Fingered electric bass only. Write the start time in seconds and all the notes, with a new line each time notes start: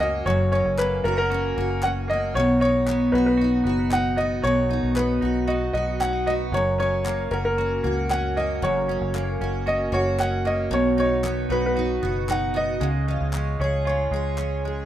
Already playing: C#2
0.26 F#1
0.65 F#1
1.05 F#1
1.57 F#1
2.35 B1
3.13 B1
3.65 F#1
4.43 B1
4.83 B1
5.22 B1
5.74 B1
6.52 F#1
7.31 F#1
7.84 C#2
8.62 F#1
9.01 F#1
9.41 F#1
9.92 F#1
10.71 B1
11.50 B1
12.03 F#1
12.81 C#2
13.21 C#2
13.60 C#2
14.11 C#2